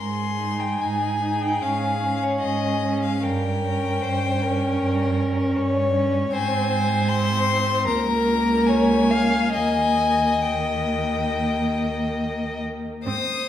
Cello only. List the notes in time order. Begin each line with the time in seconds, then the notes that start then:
Already playing: G#2
0.81 G#2
1.63 G#2
2.45 G#2
3.23 G2
4.03 G2
4.80 G2
5.57 G2
6.33 G#2
7.87 C#2
9.55 D#2
13.05 G#2